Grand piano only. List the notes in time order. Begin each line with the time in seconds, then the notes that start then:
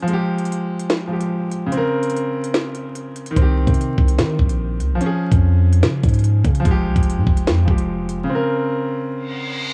0.02 F3
0.08 G#3
0.13 G4
1.08 F3 G#3
1.13 G4
1.66 C#3
1.72 C4
1.77 A#4
3.31 D#3
3.36 C4
3.42 G4
4.95 F3
5.01 C#4
5.06 G#4
6.60 F3
6.65 G#3
6.71 G4
7.65 F3 G#3
7.71 G4
8.24 C#3
8.29 C4
8.35 A#4